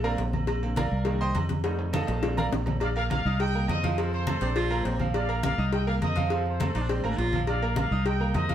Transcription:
Already playing: A#1
0.03 D3 A#3 C4 A#4 D5 F5 A#5, high conga, low agogo
0.18 A#1, cowbell, high conga, low timbale
0.33 high conga, low agogo
0.47 cowbell, high conga, low agogo
0.62 D3 A#3 C4, high conga, low agogo
0.76 A#4 D5 F5 A#5, cowbell, high conga, low agogo
0.91 C2
1.05 D#3 A#3 D4, cowbell, high conga, low agogo
1.21 C5 D#5 G5 C6, high conga
1.35 F2, cowbell, high conga, low timbale, low agogo
1.49 cowbell, high conga
1.64 G3 A3 D#4, cowbell, high conga, high timbale, low agogo
1.79 high conga, high timbale
1.93 A4 D#5 F5 A5, cowbell, high conga, high timbale, low agogo
2.07 A#1, cowbell, low timbale
2.22 A#3 C4 D4, cowbell, high bongo, high conga, low timbale, low agogo
2.37 A#4 D5 F5 A#5, low bongo, high conga, low agogo
2.52 A#1, cowbell, low bongo, high conga, low timbale
2.66 low bongo, high conga, low timbale, low agogo
2.80 D4 D5 F5 D6, cowbell, high conga, low agogo
2.96 A#3 A#4 D5 F5 A#5, high conga, low agogo
3.10 D5 F5, cowbell, high conga, low agogo
3.25 C2 D#4 D#5 D#6
3.39 D#5 G5, cowbell, high conga, low agogo
3.55 A#3 A#4 A#5, high conga
3.68 F2 C5 D#5, cowbell, high conga, low timbale, low agogo
3.83 F3 F4 F5, cowbell, high conga
3.98 F3 F4 A4 C5 F5, cowbell, high conga, low agogo
4.13 A4 C5, high conga
4.27 A3 A4 A5, cowbell, high conga, low agogo
4.41 A#1 C4 D4 D5 D6, cowbell
4.56 F4, cowbell, high conga, low agogo
4.70 A#3 A#4 A#5, high conga, low agogo
4.85 A#1 C4, cowbell, high conga, low timbale
4.99 F3 F4 F5, high conga, low agogo
5.14 D4 D5 F5 D6, cowbell, high conga, low agogo
5.29 A#3 A#4 A#5, high conga, low agogo
5.43 D5 F5, cowbell, high conga, low agogo
5.58 C2 D#4 D#5 D#6
5.73 D#5 G5, cowbell, high conga, low agogo
5.87 A#3 A#4 D5 F5 A#5, high conga
6.02 F2 C5 D#5, cowbell, high conga, low agogo
6.16 F3 F4 F5, cowbell, high conga
6.30 F3 F4 A4 C5 F5, cowbell, high conga, low agogo
6.46 A4 C5, high conga
6.60 A3 A4 A5, cowbell, high conga, low agogo
6.75 A#1 D4 D#4 D5 D6, cowbell
6.82 D4
6.89 C4, cowbell, high conga, low agogo
7.04 A1 A#3 A#4 A#5, high conga, low agogo
7.10 D4
7.17 A#1 F4, cowbell, high conga, low timbale
7.33 F3 F4 F5, high conga, low agogo
7.47 D4 D5 F5 D6, cowbell, high conga, low agogo
7.61 A#3 A#4 A#5, high conga, low agogo
7.76 D5 F5, cowbell, high conga, low agogo
7.91 C2 D#4 D#5 D#6
8.05 D#5 G5, cowbell, high conga, low agogo
8.20 A#3 A#4 A#5, high conga
8.34 F2 C5 D#5, cowbell, high conga, low timbale, low agogo
8.49 F3 F4 F5, cowbell, high conga

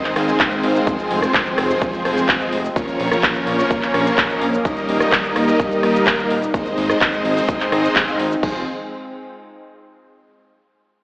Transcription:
Already playing: D#3 G#3 C4 D#4 C5 D#5
0.04 clap, closed hi-hat, shaker
0.16 G#1 G#3 C4 D#4 C5 F5, cross-stick, open hi-hat
0.28 G#3 C4 D#4 C5 G#5, closed hi-hat, shaker
0.40 G#3 C4 D#4 C5 F5, kick, clap, closed hi-hat, shaker
0.52 closed hi-hat, shaker
0.63 G#1, open hi-hat
0.75 G#3 C4 D#4 C5 F5, shaker
0.87 F3 G#3 C4 G#4 C5, kick, closed hi-hat, shaker
0.99 closed hi-hat, shaker
1.11 F1, open hi-hat
1.22 F3 G#3 C4 G#4 C5, cross-stick, closed hi-hat, shaker
1.34 kick, clap, closed hi-hat, shaker
1.46 closed hi-hat, shaker
1.58 F1, cross-stick, open hi-hat
1.70 F3 G#3 C4 G#4 C5, closed hi-hat, shaker
1.82 kick, closed hi-hat, shaker
1.93 closed hi-hat, shaker
2.05 F1 F3 G#3 C4 G#4 C5, cross-stick, open hi-hat
2.18 shaker
2.29 kick, clap, closed hi-hat, shaker
2.41 F3 G#3 C4 G#4 D#5, closed hi-hat, shaker
2.52 F1, open hi-hat
2.65 shaker
2.76 F3 A#3 C#4 A#4 C#5, kick, closed hi-hat, shaker
2.88 closed hi-hat, shaker
3.00 A#1, open hi-hat
3.12 F3 A#3 C#4 A#4 C#5, cross-stick, shaker
3.23 kick, clap, closed hi-hat, shaker
3.35 closed hi-hat, shaker
3.47 A#1, open hi-hat
3.59 F3 A#3 C#4 A#4 C#5, closed hi-hat, shaker
3.71 kick, closed hi-hat, shaker
3.82 clap, closed hi-hat, shaker
3.94 A#1 F3 A#3 C#4 A#4 C#5, cross-stick, open hi-hat
4.06 closed hi-hat, shaker
4.18 kick, clap, closed hi-hat, shaker
4.30 F3 A#3 C#4 A#4 D#5, closed hi-hat, shaker
4.41 A#1, open hi-hat
4.53 closed hi-hat, shaker
4.65 G3 A#3 D#4 A#4 D#5, kick, closed hi-hat, shaker
4.77 closed hi-hat, shaker
4.89 D#1, open hi-hat
5.00 G3 A#3 D#4 A#4 D#5, cross-stick, closed hi-hat, shaker
5.12 kick, clap, closed hi-hat, shaker
5.24 closed hi-hat, shaker
5.36 D#1, cross-stick, open hi-hat
5.48 G3 A#3 D#4 A#4 D#5, closed hi-hat, shaker
5.60 kick, closed hi-hat, shaker
5.71 closed hi-hat, shaker
5.83 D#1 G3 A#3 D#4 A#4 D#5, cross-stick, open hi-hat
5.95 closed hi-hat, shaker
6.07 kick, clap, closed hi-hat, shaker
6.19 G3 A#3 D#4 A#4 F5, closed hi-hat, shaker
6.30 D#1, open hi-hat
6.42 closed hi-hat, shaker
6.54 G#3 C4 D#4 C5 D#5, kick, closed hi-hat, shaker
6.66 closed hi-hat, shaker
6.78 G#1, open hi-hat
6.90 G#3 C4 D#4 C5 D#5, cross-stick, closed hi-hat, shaker
7.01 kick, clap, closed hi-hat, shaker
7.13 closed hi-hat, shaker
7.25 G#1, open hi-hat
7.37 G#3 C4 D#4 C5 D#5, open hi-hat, shaker
7.49 kick, closed hi-hat, shaker
7.60 clap, closed hi-hat, shaker
7.72 G#1 G#3 C4 D#4 C5 D#5, cross-stick, open hi-hat
7.84 closed hi-hat, shaker
7.96 kick, clap, closed hi-hat, shaker
8.08 G#3 C4 D#4 C5 F5, closed hi-hat, shaker
8.20 G#1, open hi-hat
8.31 closed hi-hat, shaker
8.43 F1 F3 G#3 C4 G#4 C5, kick, crash

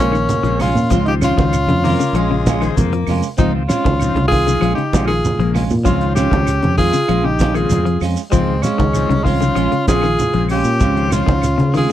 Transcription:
Already playing: A#1 C#3 G#3 C#4 F4
0.00 A#3 C4 C#4
0.12 D#3, claves, shekere
0.29 closed hi-hat, high conga, low conga, shekere
0.43 A#1 C#3 F3 G#3 C4, closed hi-hat
0.59 G#3 C#4 F4, snare, open hi-hat, high conga, claves, shekere
0.75 A#2, low conga, shekere
0.90 C#2 F3 G#3 C4 F4, kick, snare, closed hi-hat, high conga, low conga, shekere
1.05 D#3 F3 D#4 G4 C5, closed hi-hat
1.21 G#3 C4 C#4 F4, snare, closed hi-hat, claves, shekere
1.38 C#2 D#3, kick, high conga, shekere
1.53 closed hi-hat, high conga, claves, shekere
1.67 F2 C#3, closed hi-hat, high conga
1.84 D#3 G#3 A#3 C4 F4, open hi-hat, high conga, shekere
2.00 C#3, shekere
2.13 A#1 F3 G#3 F4, muted clean electric guitar stroke, closed hi-hat, high conga, claves
2.31 C#3
2.46 G#3 C#4 F4, kick, snare, closed hi-hat, high conga, shekere
2.60 C#3 D#3 G#3 C5, snare, closed hi-hat, claves, shekere
2.77 F2 A#3, kick, closed hi-hat, high conga, low conga, shekere
2.93 F3, closed hi-hat
3.07 F2 G#3 C#4 F4, open hi-hat, high conga, claves, shekere
3.23 shekere
3.38 C#2 D#3 F3 G#3 C4 D#4 F4, kick, closed hi-hat, high conga, low conga, shekere
3.55 C4 F4
3.68 G#3 C4 C#4 F4, snare, closed hi-hat, claves, shekere
3.85 C#2 D#3, kick, high conga, shekere
4.00 D#3 F3 C4, closed hi-hat, claves, shekere
4.15 C2 C#3, closed hi-hat, high conga
4.28 C4 F4 G#4, kick
4.32 D#3 F4, open hi-hat, shekere
4.46 C#3 D#3 F3 G#3, closed hi-hat, shekere
4.61 A#1 F3 G#3 C#4 F4, closed hi-hat, high conga, claves
4.74 C#3 D#4 G4, closed hi-hat
4.93 A#1 C#3 G#3 C4 C#4 F4, kick, snare, closed hi-hat, high conga, shekere
5.05 D#3 F4 G#4, claves
5.09 shekere
5.25 closed hi-hat, high conga, low conga, shekere
5.39 A#1 C#3 F3 G#3 A#3, closed hi-hat
5.54 G#3 C#4 F4, snare, open hi-hat, high conga, claves, shekere
5.70 A#2, low conga, shekere
5.84 C#2 F3 G#3 C4 C#4 F4, kick, closed hi-hat, high conga, low conga, shekere
6.00 D#3 F3 C5, closed hi-hat
6.15 G#3 C4 C#4 F4 G4, snare, closed hi-hat, claves, shekere
6.31 C#2 D#3, kick, high conga, shekere
6.47 snare, closed hi-hat, high conga, claves, shekere
6.62 F2 C#3, closed hi-hat, high conga
6.77 D#3 G#3 C4 F4 G#4, kick, open hi-hat, shekere
6.93 C#3, snare, shekere
7.08 A#1 F3 G#3 C#4 F4, closed hi-hat, high conga, claves
7.24 C#3 D#4 G4
7.39 G#3 C#4 F4, kick, snare, closed hi-hat, high conga, shekere
7.53 C#3 D#3 G#3 C4 C#4 G#4, muted clean electric guitar stroke, closed hi-hat, claves, shekere
7.57 F4
7.70 F2, closed hi-hat, high conga, low conga, shekere
7.85 F3, closed hi-hat
8.01 F2 G#3 C#4 F4, snare, open hi-hat, claves, shekere
8.16 shekere
8.30 C#2 D#3 F3 G#3 C4 F4, kick, closed hi-hat, high conga, low conga, shekere
8.62 G#3 C4 C#4 F4, snare, closed hi-hat, claves, shekere
8.78 C#2 D#3, kick, high conga, shekere
8.93 D#3 F3 C4, snare, closed hi-hat, claves, shekere
9.09 C2 C#3, closed hi-hat, high conga
9.23 D#3 G#3 C4 F4, kick, open hi-hat, shekere
9.28 C#4
9.41 C#3 D#3 F3 C4, snare, closed hi-hat, shekere
9.55 A#1 F3 G#3 C#4 F4, closed hi-hat, high conga, claves
9.72 C#3, closed hi-hat
9.87 A#1 C#3 G#3 C4 C#4 F4 G#4, kick, snare, closed hi-hat, high conga, shekere
10.01 D#3, snare, claves, shekere
10.19 closed hi-hat, high conga, low conga, shekere
10.33 A#1 C#3 F3 G#3 C4, closed hi-hat
10.49 G#3 C#4 F4 G4, open hi-hat, claves, shekere
10.64 A#2, shekere
10.80 C#2 G#3 C4 F4, muted clean electric guitar stroke, kick, snare, closed hi-hat, high conga, low conga, shekere
10.96 D#3 F3 C4 F4 C5, closed hi-hat
11.11 G#3 C4 C#4 F4, snare, closed hi-hat, claves, shekere
11.26 C#2 D#3, kick, high conga, shekere
11.42 snare, closed hi-hat, high conga, claves, shekere
11.58 C#3, closed hi-hat, high conga
11.74 D#3 G#3 C4 F4 G#4, open hi-hat, high conga, shekere

